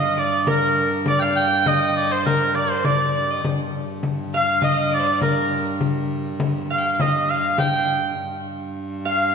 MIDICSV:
0, 0, Header, 1, 6, 480
1, 0, Start_track
1, 0, Key_signature, -2, "minor"
1, 0, Tempo, 593472
1, 860, Time_signature, 2, 2, 24, 8
1, 7561, End_track
2, 0, Start_track
2, 0, Title_t, "Fiddle"
2, 0, Program_c, 0, 110
2, 0, Note_on_c, 0, 75, 81
2, 142, Note_on_c, 0, 74, 79
2, 154, Note_off_c, 0, 75, 0
2, 374, Note_off_c, 0, 74, 0
2, 378, Note_on_c, 0, 70, 73
2, 714, Note_off_c, 0, 70, 0
2, 874, Note_on_c, 0, 74, 86
2, 1111, Note_on_c, 0, 79, 91
2, 1123, Note_off_c, 0, 74, 0
2, 1356, Note_on_c, 0, 75, 84
2, 1368, Note_off_c, 0, 79, 0
2, 1717, Note_on_c, 0, 72, 71
2, 1729, Note_off_c, 0, 75, 0
2, 1827, Note_off_c, 0, 72, 0
2, 1832, Note_on_c, 0, 70, 77
2, 2051, Note_off_c, 0, 70, 0
2, 2075, Note_on_c, 0, 74, 70
2, 2197, Note_on_c, 0, 72, 64
2, 2209, Note_off_c, 0, 74, 0
2, 2303, Note_off_c, 0, 72, 0
2, 2308, Note_on_c, 0, 74, 78
2, 2673, Note_on_c, 0, 75, 64
2, 2685, Note_off_c, 0, 74, 0
2, 2789, Note_off_c, 0, 75, 0
2, 3505, Note_on_c, 0, 77, 81
2, 3729, Note_off_c, 0, 77, 0
2, 3756, Note_on_c, 0, 75, 85
2, 3994, Note_on_c, 0, 74, 75
2, 4006, Note_off_c, 0, 75, 0
2, 4039, Note_on_c, 0, 72, 63
2, 4051, Note_off_c, 0, 74, 0
2, 4097, Note_on_c, 0, 74, 74
2, 4109, Note_off_c, 0, 72, 0
2, 4224, Note_on_c, 0, 70, 65
2, 4236, Note_off_c, 0, 74, 0
2, 4585, Note_off_c, 0, 70, 0
2, 5430, Note_on_c, 0, 77, 62
2, 5484, Note_on_c, 0, 79, 56
2, 5496, Note_off_c, 0, 77, 0
2, 5548, Note_on_c, 0, 77, 65
2, 5560, Note_off_c, 0, 79, 0
2, 5678, Note_on_c, 0, 75, 74
2, 5690, Note_off_c, 0, 77, 0
2, 5905, Note_off_c, 0, 75, 0
2, 5910, Note_on_c, 0, 77, 75
2, 6148, Note_on_c, 0, 79, 85
2, 6160, Note_off_c, 0, 77, 0
2, 6504, Note_off_c, 0, 79, 0
2, 7354, Note_on_c, 0, 77, 86
2, 7561, Note_off_c, 0, 77, 0
2, 7561, End_track
3, 0, Start_track
3, 0, Title_t, "Harp"
3, 0, Program_c, 1, 46
3, 0, Note_on_c, 1, 75, 80
3, 0, Note_on_c, 1, 77, 82
3, 140, Note_on_c, 1, 74, 71
3, 189, Note_off_c, 1, 75, 0
3, 382, Note_on_c, 1, 70, 70
3, 868, Note_off_c, 1, 74, 0
3, 872, Note_on_c, 1, 74, 78
3, 983, Note_off_c, 1, 77, 0
3, 986, Note_on_c, 1, 77, 86
3, 1344, Note_on_c, 1, 75, 76
3, 1392, Note_off_c, 1, 74, 0
3, 1827, Note_off_c, 1, 70, 0
3, 1830, Note_on_c, 1, 70, 70
3, 2060, Note_on_c, 1, 74, 65
3, 2109, Note_off_c, 1, 75, 0
3, 2307, Note_off_c, 1, 74, 0
3, 2310, Note_on_c, 1, 74, 64
3, 2333, Note_off_c, 1, 77, 0
3, 3511, Note_on_c, 1, 77, 79
3, 3546, Note_off_c, 1, 70, 0
3, 3739, Note_on_c, 1, 75, 76
3, 3787, Note_off_c, 1, 74, 0
3, 3971, Note_on_c, 1, 74, 68
3, 4020, Note_off_c, 1, 75, 0
3, 4228, Note_on_c, 1, 70, 61
3, 4857, Note_off_c, 1, 77, 0
3, 5422, Note_on_c, 1, 77, 70
3, 5465, Note_off_c, 1, 74, 0
3, 5669, Note_on_c, 1, 75, 66
3, 5904, Note_off_c, 1, 77, 0
3, 5907, Note_on_c, 1, 77, 70
3, 5944, Note_off_c, 1, 70, 0
3, 6129, Note_on_c, 1, 79, 72
3, 7111, Note_off_c, 1, 75, 0
3, 7253, Note_off_c, 1, 77, 0
3, 7322, Note_on_c, 1, 77, 75
3, 7385, Note_off_c, 1, 79, 0
3, 7561, Note_off_c, 1, 77, 0
3, 7561, End_track
4, 0, Start_track
4, 0, Title_t, "Shawm"
4, 0, Program_c, 2, 111
4, 0, Note_on_c, 2, 75, 91
4, 154, Note_on_c, 2, 74, 80
4, 167, Note_off_c, 2, 75, 0
4, 387, Note_off_c, 2, 74, 0
4, 409, Note_on_c, 2, 70, 85
4, 730, Note_off_c, 2, 70, 0
4, 872, Note_on_c, 2, 74, 92
4, 950, Note_off_c, 2, 74, 0
4, 964, Note_on_c, 2, 79, 66
4, 983, Note_on_c, 2, 77, 96
4, 996, Note_off_c, 2, 79, 0
4, 1095, Note_off_c, 2, 77, 0
4, 1100, Note_on_c, 2, 79, 95
4, 1352, Note_on_c, 2, 75, 95
4, 1364, Note_off_c, 2, 79, 0
4, 1582, Note_off_c, 2, 75, 0
4, 1587, Note_on_c, 2, 74, 83
4, 1712, Note_on_c, 2, 72, 76
4, 1724, Note_off_c, 2, 74, 0
4, 1821, Note_off_c, 2, 72, 0
4, 1826, Note_on_c, 2, 70, 87
4, 2067, Note_on_c, 2, 74, 81
4, 2079, Note_off_c, 2, 70, 0
4, 2181, Note_on_c, 2, 72, 72
4, 2193, Note_off_c, 2, 74, 0
4, 2306, Note_on_c, 2, 74, 79
4, 2319, Note_off_c, 2, 72, 0
4, 2786, Note_off_c, 2, 74, 0
4, 3534, Note_on_c, 2, 77, 92
4, 3744, Note_off_c, 2, 77, 0
4, 3754, Note_on_c, 2, 75, 92
4, 3860, Note_off_c, 2, 75, 0
4, 3998, Note_on_c, 2, 74, 85
4, 4216, Note_off_c, 2, 74, 0
4, 4224, Note_on_c, 2, 70, 76
4, 4559, Note_off_c, 2, 70, 0
4, 5432, Note_on_c, 2, 77, 76
4, 5670, Note_on_c, 2, 75, 83
4, 5682, Note_off_c, 2, 77, 0
4, 5902, Note_on_c, 2, 77, 81
4, 5914, Note_off_c, 2, 75, 0
4, 6132, Note_off_c, 2, 77, 0
4, 6137, Note_on_c, 2, 79, 92
4, 6473, Note_off_c, 2, 79, 0
4, 7344, Note_on_c, 2, 77, 85
4, 7561, Note_off_c, 2, 77, 0
4, 7561, End_track
5, 0, Start_track
5, 0, Title_t, "Viola da gamba"
5, 0, Program_c, 3, 42
5, 0, Note_on_c, 3, 43, 71
5, 2793, Note_off_c, 3, 43, 0
5, 2798, Note_on_c, 3, 43, 71
5, 6616, Note_off_c, 3, 43, 0
5, 6621, Note_on_c, 3, 43, 76
5, 7561, Note_off_c, 3, 43, 0
5, 7561, End_track
6, 0, Start_track
6, 0, Title_t, "Frame drum"
6, 378, Note_on_c, 9, 64, 87
6, 459, Note_off_c, 9, 64, 0
6, 625, Note_on_c, 9, 64, 28
6, 706, Note_off_c, 9, 64, 0
6, 855, Note_on_c, 9, 64, 83
6, 935, Note_off_c, 9, 64, 0
6, 1343, Note_on_c, 9, 64, 81
6, 1424, Note_off_c, 9, 64, 0
6, 1591, Note_on_c, 9, 64, 28
6, 1671, Note_off_c, 9, 64, 0
6, 1832, Note_on_c, 9, 64, 81
6, 1913, Note_off_c, 9, 64, 0
6, 2301, Note_on_c, 9, 64, 82
6, 2382, Note_off_c, 9, 64, 0
6, 2786, Note_on_c, 9, 64, 76
6, 2867, Note_off_c, 9, 64, 0
6, 3260, Note_on_c, 9, 64, 78
6, 3341, Note_off_c, 9, 64, 0
6, 3500, Note_on_c, 9, 64, 25
6, 3581, Note_off_c, 9, 64, 0
6, 3735, Note_on_c, 9, 64, 74
6, 3816, Note_off_c, 9, 64, 0
6, 4218, Note_on_c, 9, 64, 75
6, 4299, Note_off_c, 9, 64, 0
6, 4468, Note_on_c, 9, 64, 26
6, 4549, Note_off_c, 9, 64, 0
6, 4696, Note_on_c, 9, 64, 76
6, 4777, Note_off_c, 9, 64, 0
6, 5174, Note_on_c, 9, 64, 87
6, 5255, Note_off_c, 9, 64, 0
6, 5429, Note_on_c, 9, 64, 28
6, 5510, Note_off_c, 9, 64, 0
6, 5658, Note_on_c, 9, 64, 89
6, 5739, Note_off_c, 9, 64, 0
6, 6133, Note_on_c, 9, 64, 88
6, 6214, Note_off_c, 9, 64, 0
6, 7561, End_track
0, 0, End_of_file